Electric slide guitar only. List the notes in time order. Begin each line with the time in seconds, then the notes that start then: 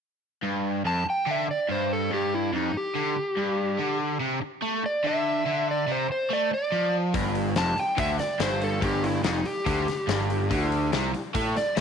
0.87 A5
1.10 G5
1.31 E5
1.51 D5
1.71 C5
1.93 A4
2.14 G4
2.35 E4
2.56 D#4
2.77 G4
4.86 D5
5.07 E5
5.71 D5
5.92 C5
6.12 C5
6.33 D5
6.54 D5
7.58 A5
7.79 G5
7.99 E5
8.20 D5
8.43 C5
8.64 A4
8.84 G4
9.03 E4
9.25 D#4
9.46 G4
11.57 D5